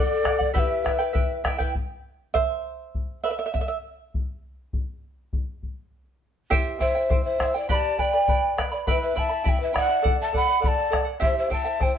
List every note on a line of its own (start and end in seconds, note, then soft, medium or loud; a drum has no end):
0.00 0.22 A4 medium
0.00 0.51 A4 medium
0.00 0.22 D5 medium
0.00 0.51 D5 medium
0.00 0.23 F#5 medium
0.23 0.38 A4 medium
0.23 0.39 D5 medium
0.23 0.37 F#5 medium
0.23 bombo rim medium
0.23 bombo low medium
0.38 0.54 D5 soft
0.38 0.54 F#5 medium
0.38 bombo low medium
0.53 0.83 E4 medium
0.53 0.84 G4 medium
0.53 0.83 B4 medium
0.53 1.41 B4 medium
0.53 0.83 E5 medium
0.53 0.60 F#5 medium
0.53 0.84 G5 medium
0.53 bombo low medium
0.59 1.40 E5 medium
0.84 0.99 E4 medium
0.84 0.98 B4 medium
0.84 0.99 E5 medium
0.84 0.97 G5 medium
0.84 bombo rim medium
0.84 bombo low medium
0.99 1.12 E4 soft
0.99 1.13 B4 medium
0.99 1.14 G5 medium
1.13 1.44 E4 medium
1.13 1.44 B4 medium
1.13 1.43 E5 medium
1.13 1.44 G5 medium
1.13 bombo low medium
1.44 1.59 E4 medium
1.44 1.58 B4 medium
1.44 1.59 E5 medium
1.44 1.57 G5 medium
1.44 bombo rim medium
1.44 bombo low medium
1.59 1.74 E4 soft
1.59 1.74 B4 medium
1.59 1.74 G5 medium
1.59 bombo low medium
1.75 bombo low medium
2.34 3.20 C5 medium
2.34 3.22 E5 medium
2.34 bombo low medium
2.95 bombo low medium
3.24 3.31 B4 medium
3.24 3.30 E5 medium
3.39 3.45 E5 medium
3.46 3.53 E5 medium
3.54 3.60 E5 medium
3.54 bombo low medium
3.61 3.67 E5 medium
3.68 3.76 E5 medium
4.14 bombo low medium
4.73 bombo low medium
5.33 bombo low medium
5.63 bombo low soft
6.50 6.79 E4 medium
6.50 6.80 G4 medium
6.50 6.79 C5 medium
6.50 6.78 E5 medium
6.50 6.79 G5 medium
6.50 bombo low medium
6.79 6.95 E4 medium
6.79 6.95 C5 medium
6.79 7.22 C5 medium
6.79 6.95 E5 medium
6.79 7.22 E5 medium
6.79 6.94 G5 medium
6.79 bombo low medium
6.95 7.09 E4 soft
6.95 7.09 C5 soft
6.95 7.10 G5 medium
7.09 7.38 E4 medium
7.09 7.38 C5 medium
7.09 7.38 E5 medium
7.09 7.39 G5 medium
7.09 bombo low medium
7.25 7.58 C5 medium
7.25 7.56 E5 medium
7.39 7.54 E4 medium
7.39 7.54 C5 medium
7.39 7.54 E5 medium
7.39 7.53 G5 medium
7.39 bombo rim medium
7.39 bombo low soft
7.54 7.69 E4 soft
7.54 7.69 C5 soft
7.54 7.70 D5 medium
7.54 7.68 G5 medium
7.54 7.69 G5 medium
7.69 7.98 G4 medium
7.69 7.98 B4 medium
7.69 7.98 D5 medium
7.69 7.99 D5 medium
7.69 7.97 G5 medium
7.69 7.75 B5 medium
7.69 7.99 B5 medium
7.69 bombo low medium
7.74 8.01 A5 loud
7.98 8.13 B4 medium
7.98 8.12 D5 medium
7.98 8.58 D5 medium
7.98 8.13 G5 medium
7.98 8.58 G5 medium
7.98 8.12 B5 medium
7.98 bombo low medium
8.13 8.27 B4 soft
8.13 8.27 D5 soft
8.13 8.28 B5 medium
8.28 8.57 B4 medium
8.28 8.58 D5 medium
8.28 8.56 G5 medium
8.28 8.58 B5 medium
8.28 bombo low medium
8.58 8.71 B4 medium
8.58 8.72 D5 medium
8.58 8.72 G5 medium
8.58 8.70 B5 medium
8.58 bombo rim medium
8.58 bombo low soft
8.72 8.86 B4 soft
8.72 8.87 D5 soft
8.72 8.87 B5 medium
8.87 9.14 E4 medium
8.87 9.16 B4 medium
8.87 9.02 B4 medium
8.87 9.15 E5 medium
8.87 9.02 E5 medium
8.87 9.14 G5 medium
8.87 9.15 B5 medium
8.87 bombo low medium
9.02 9.19 B4 medium
9.02 9.20 E5 medium
9.15 9.29 E4 medium
9.15 9.29 E5 medium
9.15 9.46 E5 medium
9.15 9.30 G5 medium
9.15 9.50 A5 medium
9.15 9.28 B5 medium
9.15 bombo low medium
9.29 9.43 E4 soft
9.29 9.44 E5 soft
9.29 9.44 B5 medium
9.44 9.72 E4 medium
9.44 9.73 E5 medium
9.44 9.60 E5 medium
9.44 9.71 G5 medium
9.44 9.73 B5 medium
9.44 bombo low medium
9.49 9.62 G5 medium
9.60 9.74 B4 medium
9.60 9.75 E5 medium
9.73 9.88 E4 medium
9.73 10.16 D5 medium
9.73 9.88 E5 medium
9.73 9.88 G5 medium
9.73 9.87 B5 medium
9.73 bombo rim medium
9.73 bombo low medium
9.77 10.17 F#5 medium
9.88 10.02 E4 soft
9.88 10.02 E5 soft
9.88 10.04 B5 medium
10.02 10.31 A4 medium
10.02 10.32 D5 medium
10.02 10.33 F#5 medium
10.02 bombo low medium
10.21 10.34 E5 medium
10.21 10.34 A5 medium
10.33 10.48 A4 medium
10.33 10.47 D5 medium
10.33 10.46 F#5 medium
10.33 10.62 F#5 medium
10.33 bombo low medium
10.37 10.62 B5 medium
10.47 10.59 D5 soft
10.47 10.60 F#5 medium
10.60 10.89 A4 medium
10.60 10.90 D5 medium
10.60 11.04 D5 medium
10.60 10.90 F#5 medium
10.60 bombo low medium
10.64 11.05 A5 loud
10.64 10.69 B5 medium
10.90 11.06 A4 medium
10.90 11.05 D5 medium
10.90 11.03 F#5 medium
10.90 bombo rim medium
10.90 bombo low medium
11.05 11.19 D5 soft
11.05 11.20 F#5 soft
11.20 11.49 E4 medium
11.20 11.50 G4 medium
11.20 11.49 C5 medium
11.20 11.48 E5 medium
11.20 11.36 E5 medium
11.20 11.50 G5 medium
11.20 bombo low medium
11.24 11.37 C5 medium
11.38 11.51 C5 medium
11.38 11.51 E5 medium
11.49 11.65 E4 medium
11.49 11.64 C5 medium
11.49 11.65 E5 medium
11.49 11.63 G5 medium
11.49 11.84 A5 medium
11.49 bombo low medium
11.54 11.83 E5 medium
11.64 11.79 E4 soft
11.64 11.79 C5 soft
11.64 11.80 G5 medium
11.79 11.98 E4 medium
11.79 11.98 C5 medium
11.79 11.96 C5 medium
11.79 11.98 E5 medium
11.79 11.98 G5 medium
11.79 11.96 G5 medium
11.79 bombo low medium